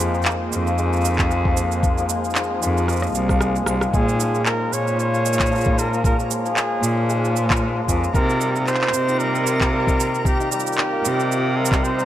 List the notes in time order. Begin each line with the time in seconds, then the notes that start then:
Already playing: F2 F3 A#3 C4 D#4 G#4 C5
0.00 G#3, cabasa
0.14 F3, cabasa
0.22 clap, cabasa
0.26 cabasa
0.31 cabasa
0.51 F2, cabasa
0.66 F3, cabasa
0.78 G#3, cabasa
0.93 cabasa
0.96 cabasa
1.01 F3, cabasa
1.05 cabasa
1.10 cabasa
1.14 cabasa
1.19 C4, kick, clap, cabasa
1.31 G#3, cabasa
1.45 F3, kick
1.57 cabasa
1.72 cabasa
1.83 kick, cabasa
1.98 F3, cabasa
2.09 G#3, cabasa
2.24 cabasa
2.30 cabasa
2.35 F3, clap, cabasa
2.43 cabasa
2.50 C4
2.62 F2 G#3, cabasa
2.77 F3, cabasa
2.88 cross-stick, cabasa
2.92 cabasa
2.96 cabasa
3.00 cross-stick, cabasa
3.03 cabasa
3.07 cabasa
3.09 cabasa
3.12 C2, cabasa
3.15 cabasa
3.29 F3, kick, cross-stick, cabasa
3.41 G#3, cross-stick, cabasa
3.56 cabasa
3.66 C2 F3, cross-stick, cabasa
3.81 C4, cross-stick, cabasa
3.93 A#2 G#3 G#4 A#4 A#5, kick, cabasa
4.09 cabasa
4.20 F3, cabasa
4.27 C#5
4.35 A#3, cabasa
4.46 G#3 A#4, clap, cabasa
4.61 F3
4.72 A#2 C#5, cabasa
4.87 cabasa
5.00 C#5, cabasa
5.13 F3, cabasa
5.25 G#3, cabasa
5.33 cabasa
5.39 kick, clap, cabasa
5.46 cabasa
5.51 F3, cabasa
5.55 cabasa
5.58 cabasa
5.61 cabasa
5.64 A#3, kick, cabasa
5.78 G#3 A#4, cabasa
5.93 F3, cabasa
6.04 A#4, kick, cabasa
6.20 cabasa
6.31 G#4, cabasa
6.45 F3, cabasa
6.56 G#3, clap, cabasa
6.82 A#2 F3, cabasa
6.97 A#3
7.09 G#3, cabasa
7.24 F3, cabasa
7.36 cabasa
7.50 kick, clap, cabasa
7.57 cabasa
7.77 F3
7.88 F2 G#3, kick, cabasa
8.04 cabasa
8.14 C3 D#3 C4 A#4, kick, cabasa
8.20 F4
8.29 A#3 A#4, cabasa
8.41 G3, cabasa
8.56 D#3, cabasa
8.64 C5 D#5, clap
8.68 cabasa
8.74 clap
8.81 clap
8.87 clap
8.93 C3, cabasa
9.08 D#3, cabasa
9.19 G3 A#4, cabasa
9.35 cabasa
9.46 D#3, cabasa
9.61 A#3, kick, clap, cabasa
9.73 G3 A#4
9.87 D#3, kick, cabasa
10.00 cabasa
10.15 cabasa
10.25 G4, kick, cabasa
10.40 D#3, cabasa
10.52 G3 G4, cabasa
10.60 cabasa
10.67 cabasa
10.73 cabasa
10.78 D#3, clap
10.93 A#3
11.04 C3 G3, cabasa
11.19 D#3, cabasa
11.32 cabasa
11.57 G3 A#4
11.65 cabasa
11.72 G3, kick, clap, cabasa
11.83 C4 C5, cabasa
11.98 G3, cabasa